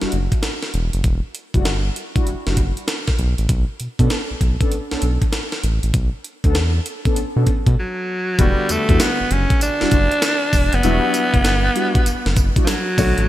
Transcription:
0.01 F#1 G3 D4 E4 F#4, snare
0.12 F#1, closed hi-hat
0.32 kick, closed hi-hat
0.43 snare, closed hi-hat
0.63 snare
0.74 E1, closed hi-hat
0.93 F#1, closed hi-hat
1.04 E1, kick, closed hi-hat
1.35 closed hi-hat
1.54 F#1 G3 D4 E4 F#4, kick, closed hi-hat
1.65 G1, snare, closed hi-hat
1.96 closed hi-hat
2.15 G3 D4 E4 F#4, kick, closed hi-hat
2.27 F#1, closed hi-hat
2.46 F#1 G3 D4 E4 F#4, snare
2.57 kick, closed hi-hat
2.77 closed hi-hat
2.88 snare, closed hi-hat
3.08 kick, snare
3.19 B1, closed hi-hat
3.38 A1, closed hi-hat
3.49 B1, kick, closed hi-hat
3.80 B2, closed hi-hat
3.99 B2 B3 C#4 D4 A4, kick, closed hi-hat
4.10 snare, closed hi-hat
4.31 B1
4.41 B1, kick, closed hi-hat
4.60 B3 C#4 D4 A4, kick, closed hi-hat
4.72 closed hi-hat
4.91 B1 B3 C#4 D4 A4, snare
5.02 B1, closed hi-hat
5.22 kick, closed hi-hat
5.33 snare, closed hi-hat
5.52 snare
5.64 A1, closed hi-hat
5.83 A1, closed hi-hat
5.94 B1, kick, closed hi-hat
6.24 closed hi-hat
6.44 D2 B3 C#4 D4 A4, kick, closed hi-hat
6.55 E2, snare, closed hi-hat
6.86 closed hi-hat
7.05 B3 C#4 D4 A4, kick, closed hi-hat
7.16 closed hi-hat
7.36 B2 B3 C#4 D4 A4
7.47 kick, closed hi-hat
7.67 B2, kick, closed hi-hat
7.79 F#3
8.39 E1 D3 G3 B3 F#4, kick, closed hi-hat, tambourine
8.69 E2 A3, closed hi-hat, tambourine
8.89 E2 G3 D4 E4 F#4, kick, closed hi-hat
9.00 B3, snare, closed hi-hat, tambourine
9.20 F#1
9.31 F#1 C#4, closed hi-hat
9.50 kick, closed hi-hat
9.61 D4, closed hi-hat, tambourine
9.80 F#1 G3 D4 E4 F#4, snare
9.91 F#1, kick, closed hi-hat, tambourine
10.12 closed hi-hat
10.22 snare, closed hi-hat, tambourine
10.53 E1, kick, open hi-hat, tambourine
10.73 F#1 B3, closed hi-hat
10.83 E1 F#3 G3 B3 D4 E4 F#4, closed hi-hat, tambourine
11.14 closed hi-hat, tambourine
11.34 F#1, kick, closed hi-hat
11.45 G1, snare, closed hi-hat, tambourine
11.75 G3 D4 E4 F#4, closed hi-hat
11.95 kick, closed hi-hat
12.06 F#1, closed hi-hat, tambourine
12.26 F#1, snare
12.36 kick, closed hi-hat, tambourine
12.56 G3 D4 E4 F#4, kick, closed hi-hat
12.64 F3, snare, closed hi-hat, tambourine
12.68 F#3
12.97 B1 D3 A3 F#4 C#5, kick, open hi-hat, tambourine
13.18 A1, closed hi-hat

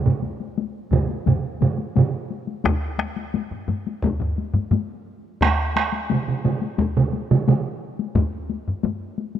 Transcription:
0.06 taiko low-mid, taiko mid
0.23 taiko high
0.40 taiko high
0.58 taiko high
0.91 taiko, taiko low-mid, taiko mid, taiko high
1.09 taiko high
1.26 taiko, taiko low-mid, taiko mid, taiko high
1.61 taiko low-mid, taiko mid, taiko high
1.78 taiko high
1.96 taiko low-mid, taiko mid, taiko high
2.30 taiko high
2.47 taiko high
2.64 taiko rim, taiko, taiko high
2.98 taiko rim, taiko high
3.16 taiko high
3.34 taiko low-mid, taiko high
3.52 taiko low-mid
3.68 taiko low-mid, taiko high
3.87 taiko high
4.04 taiko, taiko high
4.20 taiko low-mid
4.38 taiko high
4.54 taiko low-mid, taiko high
4.71 taiko low-mid, taiko high
5.41 taiko rim, taiko, taiko high
5.76 taiko rim, taiko high
5.92 taiko high
6.10 taiko mid, taiko high
6.28 taiko mid
6.44 taiko mid, taiko high
6.62 taiko high
6.78 taiko, taiko high
6.97 taiko mid
7.13 taiko high
7.31 taiko mid, taiko high
7.48 taiko mid, taiko high
7.99 taiko high
8.15 taiko, taiko low-mid, taiko high
8.50 taiko high
8.68 taiko low-mid
8.83 taiko low-mid, taiko high
9.18 taiko high
9.35 taiko high

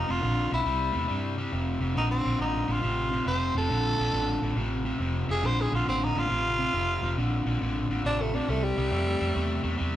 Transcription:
Already playing: D#4
0.08 F1 F2 C3 F4
0.22 A#1 F2 D3
0.51 B1 F2 D3 E4
0.65 C2 C3 G3
0.93 E2 C3 A3
1.08 G2 C3 G3
1.37 C3 G3
1.52 F1 F2 C3
1.81 F1 F2 C3
1.95 A#1 F2 D3 D#4
2.11 C4
2.24 A#1 F2 D3
2.39 A1 F2 D3 D#4
2.68 A1 F2 D3 F4
2.82 A1 F2 C3
3.12 F2 C3
3.26 F1 F2 C3 C5
3.55 F1 F2 C3 A4
3.69 A#1 F2 D3
3.98 A#1 F2 D3
4.13 A1 F2 D3
4.42 A1 F2 D3
4.56 A1 F2 C3
4.85 F2 C3
4.99 F1 F2 C3
5.28 F1 F2 C3 G#4
5.42 A#1 F2 D3 C5
5.61 G#4
5.71 A#1 F2 D3 F4
5.86 A1 F2 D3 C4
6.04 D#4
6.15 A1 F2 D3 F4
6.29 A1 F2 C3
6.59 F2 C3
6.74 F1 F2 C3
7.02 F1 F2 C3
7.17 A#1 F2 D3
7.46 A#1 F2 D3
7.61 A1 F2 D3
7.89 A1 F2 D3
8.04 A1 F2 C3 D4
8.21 A3
8.34 F2 C3 D4
8.48 C2 C3 G3 A3
8.64 G3
8.77 C2 C3 G3
8.91 F2 C3 A3
9.20 F2 C3 A3
9.35 E2 C3 A3
9.63 E2 C3 A3
9.77 E2 C3 G3

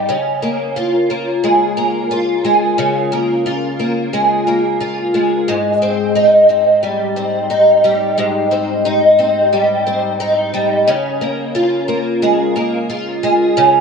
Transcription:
Already playing: G3 C4 D#4
0.09 C#3
0.42 A#3
0.76 F4
1.10 A#3
1.44 G#3
1.77 A#3
2.11 F4
2.45 G#3
2.78 C#3
3.12 A#3
3.46 F4
3.79 A#3
4.13 G#3
4.47 A#3
4.81 F4
5.14 G#3
5.48 G#2
5.82 C4
6.15 D#4
6.49 C4
6.83 G3
7.16 C4
7.50 D#4
7.84 G3
8.18 G#2
8.51 C4
8.85 D#4
9.19 C4
9.53 G3
9.87 C4
10.20 D#4
10.54 G3
10.88 C#3
11.21 A#3
11.55 F4
11.88 A#3
12.22 G#3
12.56 A#3
12.90 F4
13.23 G#3
13.57 C#3

